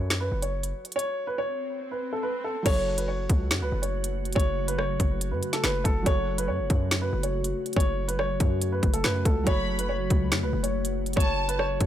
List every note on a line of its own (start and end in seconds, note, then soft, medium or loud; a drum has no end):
0.00 0.30 F#2 loud
0.00 2.60 F#3 medium
0.00 2.61 F#4 medium
0.00 2.62 A4 medium
0.00 0.17 C#5 medium
0.00 2.63 C#5 medium
0.10 finger snap medium
0.10 snare loud
0.10 closed hi-hat medium
0.20 0.41 B4 medium
0.32 0.73 F#1 loud
0.42 0.92 C#5 medium
0.42 closed hi-hat medium
0.63 closed hi-hat medium
0.85 closed hi-hat soft
0.92 1.26 C#5 loud
0.92 closed hi-hat medium
0.92 swell medium
0.99 closed hi-hat medium
1.27 1.37 B4 medium
1.38 1.88 C#5 loud
1.91 2.11 B4 medium
2.13 2.23 A4 medium
2.23 2.43 B4 medium
2.44 2.64 A4 medium
2.63 3.27 F#1 loud
2.63 11.86 C#3 medium
2.63 6.01 F#3 medium
2.63 11.86 F#3 medium
2.63 11.86 A3 medium
2.63 6.02 F#4 medium
2.63 6.03 F#4 medium
2.63 2.96 C#5 loud
2.63 kick loud
2.63 closed hi-hat medium
2.63 crash loud
2.67 6.03 A4 medium
2.67 6.04 C#5 medium
2.98 3.08 B4 medium
2.98 closed hi-hat medium
3.08 3.58 C#5 medium
3.30 3.52 C#2 loud
3.30 kick medium
3.30 closed hi-hat medium
3.51 3.63 F#2 loud
3.51 finger snap medium
3.51 snare loud
3.51 closed hi-hat medium
3.61 3.72 C#2 loud
3.61 3.82 B4 medium
3.72 4.33 F#1 loud
3.82 4.32 C#5 medium
3.82 closed hi-hat medium
4.04 closed hi-hat medium
4.25 closed hi-hat soft
4.33 4.97 F#1 loud
4.33 4.66 C#5 loud
4.33 kick loud
4.33 closed hi-hat medium
4.40 closed hi-hat medium
4.68 4.78 B4 medium
4.68 closed hi-hat medium
4.78 5.28 C#5 loud
4.78 cross-stick medium
5.00 5.33 F#1 loud
5.00 kick medium
5.00 closed hi-hat medium
5.21 closed hi-hat medium
5.31 5.42 F#2 loud
5.31 5.52 B4 medium
5.43 closed hi-hat medium
5.53 5.63 A4 medium
5.53 snare medium
5.53 closed hi-hat medium
5.64 5.84 F#1 loud
5.64 5.84 B4 medium
5.64 finger snap medium
5.64 snare loud
5.84 6.05 F#1 loud
5.84 6.05 A4 medium
5.84 kick loud
5.84 closed hi-hat medium
6.03 6.50 F#1 loud
6.03 9.41 F#3 medium
6.03 9.42 F#4 medium
6.03 11.86 F#4 medium
6.03 6.36 C#5 loud
6.03 kick loud
6.03 closed hi-hat medium
6.07 9.43 A4 medium
6.07 9.44 C#5 medium
6.38 6.48 B4 medium
6.38 closed hi-hat medium
6.48 6.61 F#2 loud
6.48 6.98 C#5 medium
6.59 6.70 F#1 loud
6.70 7.11 F#2 loud
6.70 kick loud
6.70 closed hi-hat medium
6.91 finger snap medium
6.91 snare loud
6.91 closed hi-hat medium
7.01 7.22 B4 medium
7.13 7.54 F#1 loud
7.23 7.73 C#5 medium
7.23 closed hi-hat medium
7.44 closed hi-hat medium
7.66 closed hi-hat soft
7.73 8.38 F#1 loud
7.73 8.06 C#5 loud
7.73 kick loud
7.73 closed hi-hat medium
7.80 closed hi-hat medium
8.08 8.18 B4 medium
8.08 closed hi-hat medium
8.19 8.69 C#5 loud
8.19 cross-stick medium
8.40 8.81 F#2 loud
8.40 kick medium
8.40 closed hi-hat medium
8.61 closed hi-hat medium
8.72 8.92 B4 medium
8.83 9.03 F#1 loud
8.83 kick loud
8.83 closed hi-hat medium
8.94 9.03 A4 medium
8.94 closed hi-hat medium
9.04 9.25 F#2 loud
9.04 9.24 B4 medium
9.04 finger snap medium
9.04 snare loud
9.25 9.46 C#2 loud
9.25 9.45 A4 medium
9.25 kick medium
9.25 closed hi-hat medium
9.44 10.08 F#1 loud
9.44 11.86 F#3 medium
9.44 11.86 F#4 medium
9.44 9.77 C#5 loud
9.44 9.87 B5 loud
9.44 kick loud
9.44 closed hi-hat medium
9.48 11.86 A4 medium
9.48 11.86 C#5 medium
9.79 9.89 B4 medium
9.79 closed hi-hat medium
9.89 10.39 C#5 medium
10.10 10.33 C#2 loud
10.10 kick medium
10.10 closed hi-hat medium
10.32 10.44 F#2 loud
10.32 finger snap medium
10.32 snare loud
10.32 closed hi-hat medium
10.42 10.52 C#2 loud
10.42 10.63 B4 medium
10.53 11.14 F#1 loud
10.63 11.13 C#5 medium
10.63 closed hi-hat medium
10.85 closed hi-hat medium
11.06 closed hi-hat soft
11.13 11.78 F#1 loud
11.13 11.47 C#5 loud
11.13 11.57 A5 loud
11.13 kick loud
11.13 closed hi-hat medium
11.20 closed hi-hat medium
11.48 11.59 B4 medium
11.48 closed hi-hat medium
11.59 11.86 C#5 loud
11.59 cross-stick medium
11.80 11.86 F#1 loud
11.80 kick medium
11.80 closed hi-hat medium